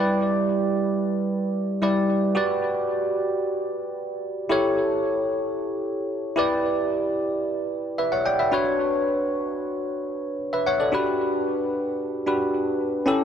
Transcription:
0.00 1.78 G3 medium
0.00 1.78 E4 medium
0.00 1.78 G4 medium
0.00 1.79 B4 medium
0.00 1.79 D5 medium
1.82 2.36 G3 medium
1.82 2.36 E4 medium
1.82 2.34 G4 medium
1.82 2.35 B4 soft
1.82 2.36 D5 medium
2.35 4.46 F#4 medium
2.35 4.46 G4 medium
2.35 4.47 B4 medium
2.35 4.47 D5 medium
4.49 6.34 E4 medium
4.49 6.34 G4 medium
4.49 6.34 A4 medium
4.49 6.35 C#5 medium
6.36 8.47 E4 medium
6.36 8.48 G4 medium
6.36 7.95 B4 medium
6.36 7.96 D5 medium
7.98 8.12 B4 medium
7.98 8.11 E5 medium
8.12 8.25 C#5 medium
8.12 8.25 F#5 medium
8.26 8.39 D5 medium
8.26 8.38 G5 medium
8.39 8.52 B4 soft
8.39 8.64 E5 medium
8.52 10.62 D4 medium
8.52 10.62 F#4 medium
8.52 10.36 B4 medium
8.52 10.37 C#5 medium
10.53 10.66 B4 medium
10.53 10.66 E5 medium
10.66 10.79 C#5 medium
10.66 10.79 F#5 medium
10.80 11.06 A4 soft
10.80 11.05 D5 medium
10.92 12.24 D4 medium
10.92 12.24 F#4 medium
10.92 12.25 G4 medium
10.92 12.25 B4 medium
12.26 13.07 D4 medium
12.26 13.07 F#4 soft
12.26 13.06 G4 soft
12.26 13.08 B4 medium
13.06 13.24 C#4 medium
13.06 13.24 E4 medium
13.06 13.24 G4 medium
13.06 13.24 A4 medium

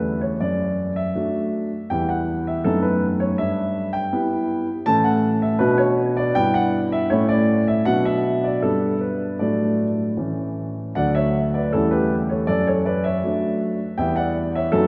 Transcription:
0.00 0.37 E2 soft
0.00 0.35 G3 soft
0.00 0.35 A3 soft
0.00 0.36 C#4 soft
0.00 0.20 B4 medium
0.21 0.40 C#5 medium
0.41 1.13 F#2 soft
0.41 0.92 D5 medium
0.96 1.90 E5 medium
1.15 1.69 F#3 soft
1.15 1.69 A3 soft
1.15 1.69 D4 soft
1.90 2.63 E2 medium
1.90 2.61 G3 soft
1.90 2.61 B3 soft
1.90 2.62 E4 soft
1.90 2.09 G5 medium
2.09 2.46 F#5 medium
2.47 2.65 E5 medium
2.64 3.36 F#2 medium
2.64 3.35 A3 soft
2.64 3.35 B3 soft
2.64 3.35 D#4 soft
2.64 2.83 A4 medium
2.82 3.05 B4 medium
3.20 3.38 C#5 medium
3.38 4.11 G2 medium
3.38 3.94 E5 medium
3.93 4.86 G5 medium
4.13 4.66 G3 soft
4.13 4.66 B3 soft
4.13 4.66 E4 soft
4.86 5.59 A2 medium
4.86 5.57 E3 soft
4.86 5.57 C#4 soft
4.86 5.58 A4 soft
4.86 5.05 A5 loud
5.04 5.27 F#5 medium
5.42 5.61 E5 medium
5.59 6.33 B2 medium
5.59 6.32 B3 soft
5.59 6.32 D4 soft
5.59 6.32 F#4 soft
5.59 5.79 B4 medium
5.78 6.01 C#5 medium
6.17 6.36 D5 medium
6.35 7.09 G2 medium
6.35 7.07 B3 soft
6.35 7.08 D4 soft
6.35 7.08 E4 soft
6.35 6.55 G5 loud
6.54 6.88 F#5 medium
6.92 7.11 E5 medium
7.10 7.84 A2 medium
7.10 7.82 A3 soft
7.10 7.83 C#4 soft
7.10 7.83 E4 soft
7.10 7.29 C#5 medium
7.29 7.67 D5 medium
7.68 7.87 E5 medium
7.85 8.60 B2 medium
7.85 8.59 F#3 soft
7.85 8.59 B3 soft
7.85 8.59 D4 soft
7.85 8.05 F#5 medium
8.05 8.43 E5 medium
8.44 8.63 D5 medium
8.62 9.39 G2 medium
8.62 9.37 G3 soft
8.62 9.37 B3 soft
8.62 9.38 D4 soft
8.62 8.97 A4 medium
9.01 9.40 B4 medium
9.39 10.16 A2 soft
9.39 10.14 F#3 soft
9.39 10.14 A3 soft
9.39 10.15 D4 soft
9.39 9.86 D5 medium
10.17 10.94 A2 soft
10.17 10.92 E3 soft
10.17 10.92 A3 soft
10.17 10.93 C#4 soft
10.95 11.71 D2 soft
10.95 11.69 F#3 soft
10.95 11.69 A3 soft
10.95 11.69 D4 soft
10.95 11.14 D5 medium
10.95 11.15 F#5 medium
11.15 11.51 C#5 medium
11.15 11.38 E5 medium
11.54 11.72 B4 soft
11.54 11.73 D5 medium
11.73 12.46 E2 medium
11.73 12.45 G3 soft
11.73 12.45 A3 soft
11.73 12.45 C#4 soft
11.73 11.91 E4 medium
11.73 11.92 A4 medium
11.91 12.27 G4 medium
11.91 12.14 B4 medium
12.30 12.47 A4 soft
12.30 12.48 C#5 medium
12.47 13.21 F#2 medium
12.47 12.66 A4 medium
12.47 12.66 D5 medium
12.67 12.85 A4 soft
12.67 12.86 C#5 medium
12.85 13.03 B4 medium
12.85 13.04 D5 medium
13.04 13.95 C#5 medium
13.04 13.97 E5 medium
13.24 13.77 F#3 soft
13.24 13.78 A3 soft
13.24 13.78 D4 soft
13.98 14.70 E2 medium
13.98 14.68 G3 soft
13.98 14.69 B3 soft
13.98 14.69 E4 soft
13.98 14.16 E5 medium
13.98 14.17 G5 medium
14.16 14.51 D5 medium
14.16 14.38 F#5 medium
14.55 14.72 C#5 soft
14.55 14.73 E5 medium
14.72 14.87 F#2 medium
14.72 14.87 A3 soft
14.72 14.87 B3 soft
14.72 14.87 D#4 soft
14.72 14.87 F#4 medium
14.72 14.87 A4 medium

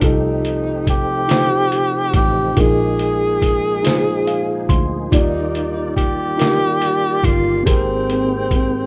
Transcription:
0.00 2.11 C2 medium
0.00 1.26 C3 soft
0.00 2.55 F3 soft
0.00 2.55 A3 soft
0.00 2.53 C4 soft
0.00 0.96 D#4 medium
0.00 2.55 D#4 soft
0.00 0.97 F4 soft
0.00 2.53 G4 soft
0.00 0.97 G4 medium
0.00 0.98 A4 medium
0.00 kick medium
0.00 closed hi-hat medium
0.07 0.89 D#4 medium
0.45 closed hi-hat soft
0.87 2.12 G4 medium
0.87 kick medium
0.87 closed hi-hat soft
1.27 2.23 D#4 medium
1.27 2.24 F4 soft
1.27 2.24 G4 medium
1.27 2.25 C5 medium
1.27 snare medium
1.27 closed hi-hat medium
1.72 closed hi-hat soft
2.14 2.53 A1 medium
2.14 2.61 G4 medium
2.14 kick medium
2.14 closed hi-hat medium
2.55 4.66 A#1 medium
2.55 3.80 A#2 soft
2.55 5.09 F3 soft
2.55 5.09 G#3 soft
2.55 5.09 A#3 soft
2.55 2.62 D4 soft
2.55 5.10 D#4 soft
2.55 3.51 F4 medium
2.55 3.51 G#4 medium
2.55 5.09 G#4 medium
2.55 3.52 A#4 medium
2.55 kick medium
2.55 closed hi-hat medium
2.60 3.54 D#4 medium
2.60 4.71 G#4 medium
2.99 closed hi-hat soft
3.42 kick medium
3.42 closed hi-hat soft
3.83 4.78 D#4 medium
3.83 4.79 F4 medium
3.83 4.79 G#4 medium
3.83 4.80 C5 medium
3.83 snare medium
3.83 closed hi-hat medium
4.27 4.67 F5 soft
4.27 closed hi-hat soft
4.69 5.08 D2 medium
4.69 5.09 C6 medium
4.69 kick medium
4.69 closed hi-hat medium
5.11 7.21 D#2 medium
5.11 8.86 D#3 soft
5.11 6.36 D#3 soft
5.11 7.64 G3 soft
5.11 8.86 A#3 soft
5.11 6.06 D#4 medium
5.11 5.93 D#4 medium
5.11 7.64 F4 medium
5.11 6.06 F4 medium
5.11 6.07 G4 medium
5.11 7.64 D5 soft
5.11 6.07 D5 medium
5.11 kick medium
5.11 closed hi-hat medium
5.55 closed hi-hat soft
5.96 7.26 G4 medium
5.96 kick medium
5.96 closed hi-hat soft
6.37 7.32 D#4 medium
6.37 7.33 F4 soft
6.37 7.33 G4 medium
6.37 7.34 A#4 medium
6.37 closed hi-hat medium
6.42 snare medium
6.82 closed hi-hat soft
7.24 7.63 G1 medium
7.24 7.65 F4 medium
7.24 kick medium
7.24 closed hi-hat medium
7.63 8.86 G#1 medium
7.63 8.86 G#2 soft
7.63 8.86 G#3 soft
7.63 8.59 C4 medium
7.63 8.86 C4 soft
7.63 8.86 C4 medium
7.63 8.60 G4 medium
7.63 8.61 G#4 medium
7.63 8.86 G5 medium
7.63 kick medium
7.63 closed hi-hat medium
7.67 8.61 A#4 medium
8.10 closed hi-hat soft
8.51 kick medium
8.51 closed hi-hat soft

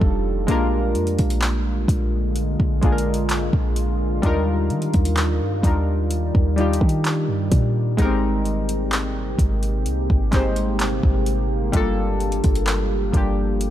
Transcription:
0.00 0.46 F1 medium
0.00 0.34 G3 medium
0.00 0.44 G3 medium
0.00 0.35 D4 medium
0.00 0.35 D#4 medium
0.00 0.36 F4 medium
0.00 0.44 G4 medium
0.00 0.40 A4 loud
0.00 kick medium
0.47 0.97 A#1 medium
0.47 4.19 D3 medium
0.47 2.08 G#3 loud
0.47 4.19 G#3 medium
0.47 2.34 A#3 medium
0.47 2.09 A#3 medium
0.47 2.10 D4 loud
0.47 6.07 F4 medium
0.47 2.10 F4 medium
0.47 kick loud
0.47 closed hi-hat medium
0.51 2.11 A#4 loud
0.95 1.17 F2 medium
0.95 closed hi-hat soft
1.07 closed hi-hat medium
1.19 1.86 A#1 loud
1.19 kick medium
1.19 closed hi-hat medium
1.30 closed hi-hat medium
1.42 clap loud
1.42 closed hi-hat medium
1.88 2.56 A#1 loud
1.88 kick medium
1.88 closed hi-hat medium
2.35 4.21 C4 medium
2.35 closed hi-hat medium
2.60 3.50 A#1 medium
2.60 kick medium
2.81 4.03 G#3 medium
2.81 4.03 A#3 medium
2.81 4.04 D4 medium
2.81 4.04 F4 medium
2.81 kick medium
2.81 closed hi-hat soft
2.86 2.91 G#4 medium
2.92 4.08 A#4 medium
2.98 closed hi-hat medium
3.14 closed hi-hat medium
3.29 clap loud
3.29 closed hi-hat medium
3.53 4.21 A#1 loud
3.53 kick medium
3.76 closed hi-hat medium
4.22 4.72 D#2 loud
4.22 7.94 D#3 medium
4.22 5.43 G3 loud
4.22 7.94 G3 medium
4.22 5.44 D4 medium
4.22 5.44 D#4 medium
4.22 5.45 F4 medium
4.22 7.94 D5 medium
4.22 kick loud
4.22 closed hi-hat medium
4.26 5.46 A#4 loud
4.70 4.92 D#3 loud
4.70 closed hi-hat soft
4.82 closed hi-hat soft
4.94 5.42 D#2 loud
4.94 kick medium
4.94 closed hi-hat medium
5.05 closed hi-hat medium
5.17 clap loud
5.17 closed hi-hat medium
5.41 5.63 G2 medium
5.62 6.31 D#2 loud
5.62 6.44 G3 medium
5.62 6.44 D4 medium
5.62 6.45 D#4 medium
5.62 6.45 F4 medium
5.62 kick medium
5.62 closed hi-hat medium
5.67 6.46 A#4 medium
6.10 13.70 G4 medium
6.10 closed hi-hat medium
6.35 6.80 D#2 loud
6.35 kick medium
6.56 7.78 G3 medium
6.56 7.78 D4 medium
6.56 7.79 D#4 medium
6.56 7.79 F4 medium
6.56 closed hi-hat soft
6.61 7.80 G4 medium
6.73 closed hi-hat medium
6.81 7.30 D#3 loud
6.81 kick medium
6.89 closed hi-hat medium
7.05 clap loud
7.05 closed hi-hat medium
7.28 7.50 G2 loud
7.52 7.97 A#2 loud
7.52 kick medium
7.52 closed hi-hat medium
7.97 9.35 G#1 loud
7.97 11.69 C3 medium
7.97 9.59 G#3 loud
7.97 11.69 G#3 medium
7.97 13.70 A#3 medium
7.97 8.05 B3 medium
7.97 9.60 D#4 medium
7.97 9.60 G4 medium
7.97 kick loud
7.97 closed hi-hat medium
8.02 9.62 C4 loud
8.02 9.61 A#4 loud
8.45 closed hi-hat soft
8.69 closed hi-hat medium
8.92 clap loud
8.92 closed hi-hat medium
9.39 9.88 G#1 loud
9.39 kick medium
9.39 closed hi-hat medium
9.63 closed hi-hat soft
9.86 10.08 C2 loud
9.86 closed hi-hat medium
10.10 11.00 G#1 loud
10.10 kick medium
10.31 11.53 G#3 medium
10.31 11.53 C4 medium
10.31 11.54 D#4 medium
10.31 11.54 G4 medium
10.31 kick medium
10.31 clap medium
10.31 closed hi-hat soft
10.36 11.55 C5 medium
10.56 closed hi-hat medium
10.80 clap loud
10.80 closed hi-hat medium
11.03 11.71 G#1 loud
11.03 kick medium
11.26 closed hi-hat medium
11.72 12.41 G1 loud
11.72 13.70 F3 medium
11.72 12.93 G3 medium
11.72 11.80 A3 medium
11.72 12.94 D4 medium
11.72 12.95 F4 medium
11.72 13.70 A4 medium
11.72 kick loud
11.72 closed hi-hat medium
11.77 12.97 A#3 medium
11.77 12.96 A4 loud
12.20 closed hi-hat soft
12.32 closed hi-hat medium
12.44 13.11 G1 loud
12.44 kick medium
12.44 closed hi-hat medium
12.55 closed hi-hat medium
12.67 clap loud
12.67 closed hi-hat medium
13.12 13.70 G1 loud
13.12 13.70 G3 medium
13.12 13.70 A#3 medium
13.12 13.70 D4 medium
13.12 13.70 F4 medium
13.12 kick medium
13.12 closed hi-hat medium
13.17 13.70 G4 medium
13.61 closed hi-hat medium

